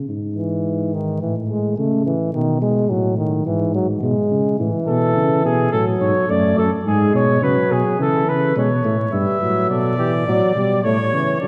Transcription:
0.09 1.23 G#2 medium
0.36 0.95 E3 medium
0.93 1.21 D#3 medium
1.21 1.78 A2 medium
1.21 1.34 E3 medium
1.50 1.77 G#3 medium
1.78 2.14 C#3 medium
1.78 2.05 A3 medium
2.06 2.33 E3 medium
2.34 2.86 B2 medium
2.34 2.61 D#3 medium
2.62 2.91 G#3 medium
2.90 3.45 A2 medium
2.90 3.17 F#3 medium
3.18 3.45 D#3 medium
3.46 4.02 G#2 medium
3.46 3.74 E3 medium
3.75 3.87 F#3 medium
4.03 4.15 B2 medium
4.03 4.58 G#3 medium
4.31 4.59 C#3 medium
4.59 4.72 A2 medium
4.59 5.70 E3 medium
4.87 5.16 B2 medium
4.87 5.40 A4 medium
5.16 5.44 C#3 medium
5.44 5.72 B2 medium
5.44 5.71 G#4 medium
5.72 6.00 A2 medium
5.72 6.28 F#3 medium
5.72 5.85 A4 medium
6.00 6.13 G#2 medium
6.00 6.31 C#5 medium
6.29 6.56 F#2 medium
6.29 6.65 A3 medium
6.29 6.57 D5 medium
6.57 6.70 F#2 medium
6.57 6.70 A4 medium
6.85 7.13 G#2 medium
6.85 7.38 G#3 medium
6.85 7.14 G#4 medium
7.13 7.42 B2 medium
7.13 7.43 C#5 medium
7.42 7.55 C#3 medium
7.42 7.98 F#3 medium
7.42 7.73 B4 medium
7.71 7.83 B2 medium
7.71 8.00 G#4 medium
7.99 8.27 C#3 medium
7.99 8.55 E3 medium
7.99 8.30 A4 loud
8.28 8.55 C#3 medium
8.28 8.56 B4 medium
8.56 8.84 B2 medium
8.56 8.69 G#3 medium
8.56 9.12 C#5 medium
8.84 9.12 A2 medium
8.84 8.97 A3 medium
9.13 9.26 G2 medium
9.13 9.39 G3 medium
9.13 9.67 B4 medium
9.13 9.66 E5 medium
9.41 9.70 A2 medium
9.41 9.97 F#3 medium
9.70 10.26 B2 medium
9.70 9.98 A4 medium
9.70 10.82 D5 medium
9.98 10.26 E3 medium
9.98 10.12 G4 medium
10.27 10.40 A2 medium
10.27 10.55 F#3 medium
10.27 10.84 D5 medium
10.55 10.84 B2 medium
10.55 10.84 G3 medium
10.84 11.14 A2 medium
10.84 10.97 A3 medium
10.84 11.40 C#5 medium
10.84 11.41 C#5 medium
11.13 11.40 C#3 medium
11.13 11.41 E3 medium
11.41 11.48 D3 medium
11.41 11.48 F#3 medium
11.41 11.48 A4 medium
11.41 11.48 D5 medium

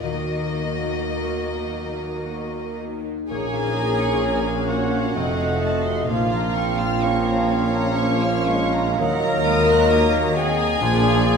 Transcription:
0.00 3.07 D#2 soft
0.00 3.34 D#3 soft
0.00 3.07 D#3 soft
0.00 3.06 F#3 soft
0.00 2.99 A#3 soft
0.00 3.06 A#3 soft
0.00 2.95 A#3 soft
0.00 3.07 D#4 soft
0.00 2.95 F#4 soft
0.00 2.99 F#4 soft
0.00 3.07 A#4 soft
0.00 3.38 A#4 soft
0.00 2.76 D#5 medium
0.59 2.79 D#4 soft
1.16 2.25 F#4 soft
1.71 3.34 D#5 soft
2.26 3.34 F#4 soft
2.80 3.34 D#4 soft
3.29 5.12 A#1 medium
3.29 5.18 A#1 medium
3.29 5.20 A#2 soft
3.29 5.12 A#2 soft
3.29 5.12 A#3 medium
3.29 5.17 A#3 medium
3.29 5.12 C#4 soft
3.29 4.25 D#4 medium
3.29 4.66 G#4 medium
3.29 5.12 C#5 medium
3.29 3.51 C#5 medium
3.29 5.12 C#5 soft
3.29 4.67 G#5 medium
3.53 6.32 F3 soft
3.53 3.77 F5 soft
3.76 5.19 A#3 soft
3.76 4.00 A#5 soft
4.00 4.46 C#4 soft
4.00 4.24 C#6 soft
4.23 5.19 C#4 soft
4.23 5.20 A#4 soft
4.23 4.47 A#5 soft
4.47 5.20 C#4 soft
4.47 4.70 F5 soft
4.69 6.08 F#4 medium
4.69 4.93 C#5 soft
4.69 5.20 C#5 soft
4.69 6.09 F#5 soft
4.93 5.16 F5 soft
4.93 5.20 A#5 soft
5.15 6.09 F1 medium
5.15 6.13 F2 medium
5.15 6.09 F2 medium
5.15 6.08 A3 soft
5.15 6.10 A3 medium
5.15 5.61 C4 medium
5.15 6.10 C4 medium
5.15 6.08 D#5 medium
5.15 6.09 D#5 medium
5.15 5.38 D#5 medium
5.39 6.13 C3 soft
5.39 5.62 F5 soft
5.62 6.11 A3 medium
5.62 6.12 C4 soft
5.62 5.86 A5 soft
5.85 6.13 D#4 soft
5.85 6.09 C6 soft
6.07 9.00 A#1 medium
6.07 8.95 A#1 medium
6.07 8.95 A#2 medium
6.07 9.03 A#2 soft
6.07 8.95 F3 medium
6.07 8.99 F3 soft
6.07 11.37 A#3 medium
6.07 6.57 A#3 medium
6.07 7.01 F4 medium
6.07 6.30 F5 medium
6.07 9.88 F5 medium
6.07 7.02 F5 medium
6.07 8.95 F5 soft
6.31 9.03 F3 soft
6.31 6.55 A#5 soft
6.54 8.72 A#3 soft
6.54 7.99 C4 medium
6.54 6.79 C#6 soft
6.79 7.03 F6 soft
7.03 8.99 C#4 medium
7.03 8.21 A#4 soft
7.03 8.99 C#5 medium
7.03 7.27 C#6 medium
7.27 8.47 F4 medium
7.27 7.51 A#5 soft
7.50 7.74 F5 soft
7.50 7.97 F5 soft
7.74 7.97 A#5 medium
7.74 10.57 A#5 soft
7.97 8.46 A#3 medium
7.97 9.03 F5 medium
7.97 8.21 C#6 medium
8.21 9.91 A#4 soft
8.21 8.47 F6 soft
8.46 9.01 G#3 medium
8.46 9.03 F4 medium
8.46 8.73 C#6 medium
8.73 9.46 A#3 soft
8.73 8.99 A#5 medium
8.98 10.81 D#2 medium
8.98 10.65 D#2 medium
8.98 10.81 D#3 medium
8.98 10.85 D#3 medium
8.98 10.53 F#3 medium
8.98 10.65 F#3 medium
8.98 9.47 F#3 medium
8.98 10.36 A#4 loud
8.98 10.81 D#5 medium
8.98 9.23 F#5 medium
8.98 10.37 A#5 medium
9.23 10.85 D#4 soft
9.23 9.47 A#5 medium
9.46 9.93 G#3 medium
9.46 11.37 A#3 soft
9.46 9.70 D#6 medium
9.70 10.13 F#4 soft
9.70 9.93 F#6 medium
9.91 10.38 A#3 medium
9.91 11.37 A#4 soft
9.91 10.51 D#5 medium
9.91 10.14 D#6 medium
10.14 10.85 F#4 medium
10.14 10.36 A#5 medium
10.36 10.82 C4 medium
10.36 11.37 G#4 loud
10.36 10.59 F#5 medium
10.36 10.85 F#5 medium
10.36 11.37 G#5 medium
10.58 10.81 A#5 medium
10.58 11.37 A#5 soft
10.80 11.37 A#1 medium
10.80 11.37 A#2 medium
10.80 11.37 F3 medium
10.80 11.27 D4 medium
10.80 11.01 D5 medium
10.80 11.37 D5 medium
11.02 11.37 F3 soft
11.02 11.25 F5 medium
11.24 11.37 A#3 medium
11.24 11.37 D4 medium
11.24 11.37 G#5 medium

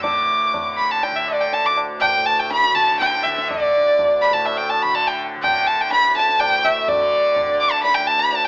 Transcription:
0.00 1.64 D2 medium
0.00 0.02 A2 medium
0.00 2.18 A2 medium
0.00 0.56 D3 medium
0.00 0.74 D6 medium
0.00 tabla tin loud
0.00 tabla ge loud
0.54 1.11 D3 medium
0.54 tabla tin medium
0.54 tabla ge medium
0.77 0.92 B5 medium
0.91 1.05 A5 medium
1.03 1.18 G5 medium
1.03 tabla tin medium
1.11 2.72 D3 medium
1.16 1.31 E5 medium
1.28 1.43 D5 medium
1.28 tabla na medium
1.41 1.55 G5 medium
1.53 1.67 A5 loud
1.53 tabla tin medium
1.64 3.77 D2 medium
1.64 1.77 D6 medium
1.77 tabla na medium
2.00 2.27 G5 loud
2.00 tabla na medium
2.00 tabla ge medium
2.18 4.30 A2 medium
2.26 2.40 A5 loud
2.39 2.51 G5 medium
2.51 2.76 B5 loud
2.51 tabla te medium
2.64 tabla te medium
2.73 3.26 D3 medium
2.73 2.99 A5 loud
2.73 tabla ke medium
2.88 tabla te medium
2.99 3.25 G5 loud
2.99 tabla te medium
3.13 tabla te medium
3.23 4.84 D3 medium
3.23 3.50 E5 medium
3.23 tabla ke medium
3.38 tabla te medium
3.48 4.23 D5 loud
3.48 tabla tin loud
3.48 tabla ge loud
3.77 5.88 D2 medium
3.99 tabla tin medium
3.99 tabla ge medium
4.21 4.35 B5 loud
4.21 tabla na medium
4.30 6.41 A2 medium
4.30 4.47 A5 medium
4.35 tabla ke medium
4.45 4.59 E5 medium
4.45 tabla tin medium
4.57 4.71 G5 medium
4.69 4.84 A5 medium
4.69 tabla na medium
4.82 5.37 D3 medium
4.82 4.96 B5 loud
4.95 5.09 A5 loud
4.95 tabla tin medium
5.07 5.19 G5 medium
5.37 6.94 D3 medium
5.42 5.68 G5 loud
5.42 tabla na medium
5.42 tabla ge medium
5.67 5.82 A5 medium
5.81 5.91 G5 medium
5.89 7.97 D2 medium
5.89 6.14 B5 loud
5.89 tabla te medium
6.04 tabla te medium
6.16 6.41 A5 loud
6.16 tabla ke medium
6.29 tabla te medium
6.40 8.48 A2 medium
6.40 6.66 G5 loud
6.40 tabla na loud
6.40 tabla ge medium
6.64 6.90 E5 loud
6.64 tabla te medium
6.88 7.61 D5 loud
6.88 tabla tin loud
6.88 tabla ge loud
6.94 7.46 D3 medium
7.36 tabla tin medium
7.36 tabla ge medium
7.46 8.48 D3 medium
7.60 7.73 D6 loud
7.71 7.82 A5 loud
7.83 7.95 B5 loud
7.83 tabla tin medium
7.94 8.48 D2 medium
7.94 8.08 G5 loud
8.07 8.21 A5 loud
8.19 8.32 B5 loud
8.31 8.46 A5 loud
8.31 tabla tin medium
8.44 8.48 G5 medium

